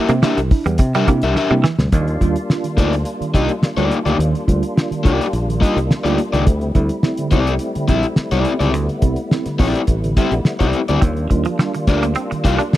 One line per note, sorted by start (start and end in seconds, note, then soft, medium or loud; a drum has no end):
0.00 0.10 E5 medium
0.09 0.21 C3 medium
0.09 0.19 A#3 medium
0.09 closed hi-hat medium
0.22 0.33 A#3 medium
0.22 0.37 D4 medium
0.22 0.38 D4 medium
0.22 0.37 E4 medium
0.22 0.38 G4 medium
0.22 0.38 A#4 medium
0.22 0.38 E5 medium
0.22 muted fingered electric bass stroke soft
0.22 snare loud
0.37 0.49 C2 medium
0.37 0.51 C3 medium
0.37 0.51 G3 medium
0.37 muted clean electric guitar stroke soft
0.37 closed hi-hat medium
0.51 0.66 D4 medium
0.51 0.66 E4 medium
0.51 kick loud
0.51 open hi-hat medium
0.66 0.78 E2 loud
0.66 0.75 G3 medium
0.66 closed hi-hat medium
0.78 0.92 C3 loud
0.78 0.85 D4 soft
0.78 0.85 E4 soft
0.78 muted clean electric guitar stroke soft
0.78 kick loud
0.78 closed hi-hat loud
0.94 1.08 C3 medium
0.94 1.04 G3 medium
0.94 1.08 G3 medium
0.94 1.09 D4 medium
0.94 1.08 G4 medium
0.94 1.08 A#4 medium
0.94 1.08 E5 medium
0.94 closed hi-hat medium
1.07 1.21 C3 medium
1.07 1.22 A#3 medium
1.07 1.18 A#3 medium
1.07 1.22 D4 medium
1.07 1.22 E4 medium
1.07 kick medium
1.07 closed hi-hat medium
1.22 1.35 C2 medium
1.22 1.34 D4 medium
1.22 1.34 G4 medium
1.22 1.34 A#4 medium
1.22 1.33 E5 medium
1.22 closed hi-hat medium
1.36 1.51 D4 medium
1.36 1.52 G4 medium
1.36 1.52 A#4 medium
1.36 1.52 E5 loud
1.36 muted clean electric guitar stroke soft
1.36 snare medium
1.50 1.63 C3 loud
1.50 1.60 G3 medium
1.50 1.64 A#3 medium
1.50 1.64 D4 medium
1.50 1.64 E4 medium
1.64 1.74 E3 medium
1.64 snare medium
1.78 1.91 D2 medium
1.78 1.92 C3 medium
1.78 1.93 G3 medium
1.78 snare medium
1.92 2.18 D#2 loud
1.92 2.07 D#3 medium
1.92 12.77 G3 medium
1.92 6.44 A#3 medium
1.92 6.44 D4 medium
1.92 6.43 F4 medium
1.92 kick loud
1.92 closed hi-hat loud
2.07 2.13 D4 soft
2.07 2.13 F4 soft
2.07 closed hi-hat soft
2.20 2.34 D#2 medium
2.20 2.35 G3 medium
2.20 2.36 D4 medium
2.20 2.36 F4 medium
2.20 kick medium
2.20 closed hi-hat medium
2.36 closed hi-hat medium
2.50 2.64 D4 medium
2.50 2.64 F4 medium
2.50 snare loud
2.64 2.77 D#3 medium
2.64 closed hi-hat medium
2.77 3.03 D2 medium
2.77 2.92 A#3 medium
2.77 2.92 D4 medium
2.77 2.93 D#4 medium
2.77 2.92 F4 medium
2.77 2.93 G4 medium
2.77 2.93 D5 loud
2.77 kick loud
2.77 closed hi-hat medium
2.93 closed hi-hat medium
3.05 3.12 D4 soft
3.05 3.12 F4 soft
3.05 closed hi-hat medium
3.21 3.34 D#3 medium
3.21 muted fingered electric bass stroke soft
3.21 closed hi-hat medium
3.34 3.48 C2 medium
3.34 3.49 G3 medium
3.34 3.49 A#3 medium
3.34 3.49 D4 medium
3.34 3.50 D#4 medium
3.34 3.49 F4 medium
3.34 3.50 G4 medium
3.34 3.50 D#5 medium
3.34 kick medium
3.34 closed hi-hat medium
3.49 closed hi-hat medium
3.62 muted fingered electric bass stroke soft
3.62 snare loud
3.77 3.89 D2 medium
3.77 3.91 G3 medium
3.77 3.98 A#3 medium
3.77 3.91 D4 medium
3.77 3.97 D#4 medium
3.77 3.91 F4 medium
3.77 3.97 G4 medium
3.77 3.97 D5 medium
3.77 closed hi-hat soft
3.91 closed hi-hat medium
4.06 4.18 D2 medium
4.06 4.18 D#3 medium
4.06 4.17 A#3 medium
4.06 4.17 D#4 medium
4.06 4.17 G4 medium
4.06 4.16 D5 medium
4.06 closed hi-hat medium
4.19 4.33 D#2 medium
4.19 4.34 D#3 medium
4.19 closed hi-hat loud
4.34 4.40 D4 soft
4.34 4.40 F4 soft
4.34 closed hi-hat soft
4.47 4.62 D2 medium
4.47 4.63 G3 medium
4.47 4.63 D4 medium
4.47 4.63 F4 medium
4.47 kick medium
4.47 closed hi-hat medium
4.63 closed hi-hat medium
4.76 4.91 D4 medium
4.76 4.91 F4 medium
4.76 snare loud
4.91 5.04 D#3 medium
4.91 muted fingered electric bass stroke soft
4.91 closed hi-hat medium
5.03 5.19 C2 medium
5.03 5.25 A#3 medium
5.03 5.20 D4 medium
5.03 5.25 D#4 medium
5.03 5.20 F4 medium
5.03 5.25 G4 medium
5.03 5.26 D5 medium
5.03 kick loud
5.03 closed hi-hat medium
5.21 closed hi-hat medium
5.33 5.59 A#1 medium
5.33 5.40 D4 soft
5.33 5.39 F4 soft
5.33 closed hi-hat medium
5.48 5.61 D#3 medium
5.48 closed hi-hat medium
5.60 5.77 G3 medium
5.60 5.76 A#3 medium
5.60 5.77 D4 medium
5.60 5.77 D#4 medium
5.60 5.77 F4 medium
5.60 5.77 G4 medium
5.60 5.77 D#5 medium
5.60 kick medium
5.60 snare soft
5.60 closed hi-hat medium
5.77 5.89 C2 loud
5.77 closed hi-hat medium
5.90 muted fingered electric bass stroke soft
5.90 snare loud
6.04 6.17 D2 medium
6.04 6.18 G3 medium
6.04 6.18 A#3 medium
6.04 6.19 D4 medium
6.04 6.18 D#4 medium
6.04 6.19 F4 medium
6.04 6.18 G4 medium
6.04 6.18 D5 medium
6.04 closed hi-hat medium
6.18 closed hi-hat medium
6.33 6.45 C#2 medium
6.33 6.47 D#3 medium
6.33 6.44 A#3 soft
6.33 6.44 D#4 medium
6.33 6.44 G4 medium
6.33 6.44 D5 medium
6.33 closed hi-hat medium
6.45 6.72 D2 loud
6.45 6.62 D3 medium
6.45 10.97 A3 medium
6.45 8.72 C4 medium
6.45 10.97 E4 medium
6.45 kick loud
6.45 closed hi-hat medium
6.61 6.68 C4 soft
6.61 6.68 E4 soft
6.61 closed hi-hat soft
6.75 6.89 D2 loud
6.75 6.90 G3 medium
6.75 6.90 C4 medium
6.75 6.90 E4 medium
6.75 kick medium
6.75 closed hi-hat medium
6.89 closed hi-hat medium
7.03 7.19 C4 medium
7.03 7.19 E4 medium
7.03 snare loud
7.17 7.32 D3 medium
7.17 closed hi-hat medium
7.31 7.57 C2 medium
7.31 7.52 C4 medium
7.31 7.47 C4 medium
7.31 7.52 E4 medium
7.31 7.48 E4 medium
7.31 7.52 G4 medium
7.31 7.53 D5 loud
7.31 kick loud
7.31 closed hi-hat medium
7.47 closed hi-hat medium
7.59 7.67 C4 soft
7.59 7.67 E4 medium
7.59 closed hi-hat medium
7.75 7.89 D3 medium
7.75 muted fingered electric bass stroke soft
7.75 closed hi-hat medium
7.88 8.03 A#1 medium
7.88 8.04 G3 medium
7.88 8.04 C4 medium
7.88 8.04 E4 medium
7.88 8.04 G4 medium
7.88 8.04 E5 loud
7.88 kick medium
7.88 snare soft
7.88 closed hi-hat medium
8.03 closed hi-hat soft
8.16 muted fingered electric bass stroke soft
8.16 snare loud
8.31 8.44 C2 medium
8.31 8.46 G3 medium
8.31 8.46 C4 medium
8.31 8.53 C4 medium
8.31 8.52 E4 medium
8.31 8.46 E4 medium
8.31 8.52 G4 medium
8.31 8.52 D5 medium
8.31 closed hi-hat medium
8.45 closed hi-hat medium
8.60 8.73 C#2 medium
8.60 8.73 D3 medium
8.60 8.72 C4 medium
8.60 8.71 E4 medium
8.60 8.71 G4 medium
8.60 8.71 D5 medium
8.60 closed hi-hat medium
8.73 8.87 D2 medium
8.73 8.89 D3 medium
8.73 11.00 B3 medium
8.73 closed hi-hat medium
8.89 8.95 C4 soft
8.89 8.95 E4 soft
8.89 closed hi-hat soft
9.02 9.16 C2 medium
9.02 9.18 G3 medium
9.02 9.18 C4 medium
9.02 9.18 E4 medium
9.02 kick medium
9.02 closed hi-hat medium
9.16 closed hi-hat medium
9.31 9.46 C4 medium
9.31 9.47 E4 medium
9.31 snare loud
9.46 9.60 D3 medium
9.46 muted fingered electric bass stroke soft
9.46 snare soft
9.46 closed hi-hat medium
9.59 9.73 A#1 medium
9.59 9.80 C4 medium
9.59 9.75 C4 medium
9.59 9.80 E4 loud
9.59 9.75 E4 medium
9.59 9.80 G4 medium
9.59 9.81 D5 medium
9.59 kick loud
9.59 open hi-hat medium
9.75 closed hi-hat medium
9.87 10.13 A1 medium
9.87 9.95 C4 soft
9.87 9.95 E4 soft
9.87 kick medium
9.87 closed hi-hat medium
10.04 10.17 D3 medium
10.04 closed hi-hat medium
10.17 10.32 G3 medium
10.17 10.32 C4 medium
10.17 10.32 E4 medium
10.17 10.32 G4 medium
10.17 10.32 E5 loud
10.17 kick medium
10.17 closed hi-hat medium
10.31 10.44 A#1 medium
10.31 closed hi-hat medium
10.45 snare loud
10.59 10.72 C2 medium
10.59 10.74 G3 medium
10.59 10.80 C4 medium
10.59 10.74 C4 medium
10.59 10.80 E4 medium
10.59 10.74 E4 medium
10.59 10.79 G4 medium
10.59 10.79 D5 medium
10.59 kick medium
10.59 closed hi-hat soft
10.73 closed hi-hat medium
10.88 11.01 D2 medium
10.88 11.03 D3 medium
10.88 11.00 C4 soft
10.88 11.00 E4 medium
10.88 11.00 G4 medium
10.88 10.99 D5 medium
10.88 closed hi-hat medium
11.02 11.27 D#2 medium
11.02 11.12 D#3 medium
11.02 12.77 A#3 medium
11.02 12.77 D4 medium
11.02 12.77 F4 medium
11.02 kick loud
11.02 closed hi-hat loud
11.17 11.23 D4 soft
11.17 11.23 F4 soft
11.17 closed hi-hat soft
11.30 11.44 D#2 medium
11.30 11.46 G3 medium
11.30 11.46 D4 medium
11.30 11.46 F4 medium
11.30 muted clean electric guitar stroke soft
11.30 kick medium
11.30 closed hi-hat medium
11.45 11.55 F3 medium
11.45 closed hi-hat medium
11.59 11.70 G3 medium
11.59 11.74 D4 medium
11.59 11.74 F4 medium
11.59 snare loud
11.74 11.88 D#3 medium
11.74 muted clean electric guitar stroke soft
11.74 closed hi-hat medium
11.87 12.13 D2 medium
11.87 12.03 D4 medium
11.87 12.02 D4 medium
11.87 12.03 F4 medium
11.87 12.03 G4 medium
11.87 12.03 A#4 medium
11.87 12.03 D5 medium
11.87 kick medium
11.87 closed hi-hat medium
12.03 12.12 A#3 medium
12.03 closed hi-hat medium
12.15 12.26 C4 medium
12.15 12.22 D4 soft
12.15 12.22 F4 soft
12.15 closed hi-hat medium
12.31 12.45 D#3 medium
12.31 muted clean electric guitar stroke soft
12.31 muted fingered electric bass stroke soft
12.31 closed hi-hat medium
12.44 12.58 C2 medium
12.44 12.59 G3 medium
12.44 12.59 D4 medium
12.44 12.60 F4 medium
12.44 12.59 G4 medium
12.44 12.60 A#4 medium
12.44 12.60 F5 medium
12.44 kick medium
12.44 closed hi-hat medium
12.59 12.68 D4 medium
12.59 closed hi-hat medium
12.73 muted fingered electric bass stroke soft
12.73 snare loud